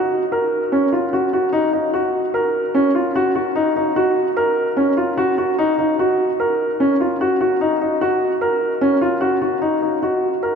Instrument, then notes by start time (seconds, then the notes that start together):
grand piano
Already playing: F#4
0.32 A#4
0.72 C#4
0.92 F4
1.13 F#4
1.33 F#4
1.53 D#4
1.73 D#4
1.94 F#4
2.34 A#4
2.75 C#4
2.95 F4
3.16 F#4
3.35 F#4
3.56 D#4
3.76 D#4
3.96 F#4
4.37 A#4
4.77 C#4
4.97 F4
5.17 F#4
5.38 F#4
5.59 D#4
5.78 D#4
5.99 F#4
6.40 A#4
6.80 C#4
7.00 F4
7.21 F#4
7.41 F#4
7.61 D#4
7.81 D#4
8.01 F#4
8.41 A#4
8.81 C#4
9.01 F4
9.21 F#4
9.42 F#4
9.62 D#4
9.82 D#4
10.03 F#4
10.43 A#4